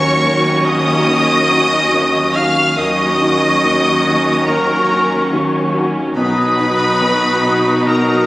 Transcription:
Already playing: felt piano D#2 D#3 C#4 D#4 F#4, double bass section D#2, cello section D#2, french horn section F#3 C#4, viola section F#3 C#4, clarinet F#4, violin section C#5 C#6, oboe C#5, flute section C#6
0.25 felt piano D#2 D#3
0.65 felt piano C#4 D#4 F#4, oboe D#5, violin section D#5 D#6
1.08 felt piano D#2 D#3
1.51 felt piano C#4 D#4 F#4
1.91 felt piano D#2 D#3
2.34 felt piano C#4 D#4 F#4, violin section F5 F6, oboe F5
2.77 felt piano D#2 D#3, cello section D#2, double bass section D#2, french horn section F#3 C#4, viola section F#3 C#4, clarinet F#4, violin section D#5 D#6, oboe D#5, flute section C#6
3.20 felt piano C#4 D#4 F#4
3.63 felt piano D#2 D#3
4.05 felt piano C#4 D#4 F#4
4.47 felt piano D#2 D#3, oboe A#4, violin section A#4 A#5
4.90 felt piano C#4 D#4 F#4
5.32 felt piano D#2 D#3
5.76 felt piano C#4 D#4 F#4
6.16 felt piano B1 B2, double bass section B1, cello section B2, viola section F#3 D#4, french horn section F#3 D#4, clarinet F#4, violin section B4 B5, oboe B4, flute section D#6
6.59 felt piano B3 D#4 F#4
7.01 felt piano B1 B2
7.45 felt piano B3 D#4 F#4
7.87 felt piano B1 B2, oboe A#4, violin section A#4 A#5

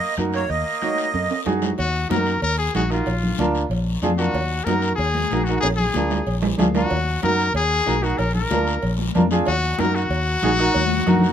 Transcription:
Already playing: trumpet A#3, accordion D#5
0.17 fingered electric bass F#2, upright piano D#4 F#4 A#4, high conga, high timbale, short guiro
0.33 trumpet A#3, accordion C#5, high timbale, short guiro
0.49 fingered electric bass D#2, trumpet A#3, accordion D#5, high timbale, long guiro
0.82 upright piano D#4 F#4 C#5, high conga, high timbale, short guiro
0.98 high timbale, short guiro
1.14 fingered electric bass F#2, high timbale, long guiro
1.31 high timbale
1.46 fingered electric bass F#2, upright piano D#4 F#4 G#4, high conga, low timbale, short guiro
1.62 low timbale, short guiro
1.78 fingered electric bass D#2, trumpet F#4, cowbell, high conga, long guiro
2.09 fingered electric bass F#2, upright piano D#4 F#4 A#4, trumpet A#4, cowbell, high conga, short guiro
2.26 short guiro
2.42 fingered electric bass D#2, trumpet A#4, cowbell, high conga, long guiro
2.58 trumpet G#4
2.74 fingered electric bass A#1, upright piano D#4 F#4 G#4, trumpet F#4, cowbell, high conga, low timbale, short guiro
2.90 upright piano D#4 F#4 A#4, trumpet F4, short guiro
3.06 fingered electric bass A#1, cowbell, high conga, long guiro
3.23 low conga
3.38 fingered electric bass D2, upright piano D4 F4 A#4, cowbell, high conga, short guiro
3.55 short guiro
3.70 fingered electric bass A#1, cowbell, high conga, long guiro
4.02 fingered electric bass F2, upright piano D4 F4 G#4, cowbell, high conga, low conga, short guiro
4.18 upright piano D4 F4 A#4, trumpet F#4, short guiro
4.34 fingered electric bass D#2, cowbell, high conga, long guiro
4.64 fingered electric bass F#2, upright piano D#4 F#4, trumpet A#4, cowbell, high conga, short guiro
4.68 upright piano A#4
4.82 short guiro
4.96 fingered electric bass D#2, trumpet G#4, cowbell, high conga, long guiro
5.14 high conga
5.30 fingered electric bass A#1, upright piano D#4 F#4 A#4, cowbell, high conga, short guiro
5.44 trumpet F#4, short guiro
5.49 upright piano D#4 F#4 A#4
5.60 fingered electric bass A#1, trumpet G#4, cowbell, high conga, high timbale, long guiro
5.76 trumpet G#4, low conga
5.94 fingered electric bass D2, upright piano D4 F4 A#4, cowbell, high conga, short guiro
6.10 low timbale, short guiro
6.27 fingered electric bass A#1, cowbell, high conga, long guiro
6.42 low timbale
6.58 fingered electric bass D2, upright piano D4 F4 G#4, cowbell, high conga, low conga, low timbale, short guiro
6.74 upright piano D4 F4 A#4, trumpet F#4, high conga, low timbale, short guiro
6.90 fingered electric bass D#2, cowbell, high conga, long guiro
7.22 fingered electric bass F#2, upright piano D#4 F#4 A#4, trumpet A#4, cowbell, high conga, short guiro
7.39 short guiro
7.54 fingered electric bass D#2, trumpet G#4, cowbell, high conga, long guiro
7.86 fingered electric bass B1, upright piano D#4 F#4 A#4, cowbell, high conga, short guiro
8.02 upright piano D#4 F#4 A#4, trumpet F#4, short guiro
8.18 fingered electric bass A#1, trumpet A#4, cowbell, high conga, long guiro
8.35 trumpet A#4, low conga
8.50 fingered electric bass D2, upright piano D4 F4 A#4, cowbell, high conga, short guiro
8.67 short guiro
8.82 fingered electric bass A#1, cowbell, high conga, long guiro
8.99 high conga
9.14 fingered electric bass F2, upright piano D4 F4 A#4, cowbell, high conga, low conga, low timbale, short guiro
9.31 upright piano D4 F4 G#4, short guiro
9.45 fingered electric bass D#2, trumpet F#4, cowbell, high conga, long guiro
9.78 fingered electric bass F#2, upright piano D#4 F#4 A#4, trumpet A#4, cowbell, high conga, short guiro
9.95 trumpet F#4, short guiro
10.10 fingered electric bass D#2, cowbell, high conga, long guiro
10.42 fingered electric bass A#1, upright piano D#4 F#4 G#4, cowbell, high conga, low timbale, short guiro
10.59 upright piano D#4 F#4 A#4, short guiro
10.74 fingered electric bass D#2, cowbell, high conga, long guiro
10.86 high conga
10.97 high conga
11.06 fingered electric bass F#2, upright piano D#4 F#4 A#4, cowbell, low conga, short guiro
11.18 low conga
11.23 short guiro
11.29 high conga

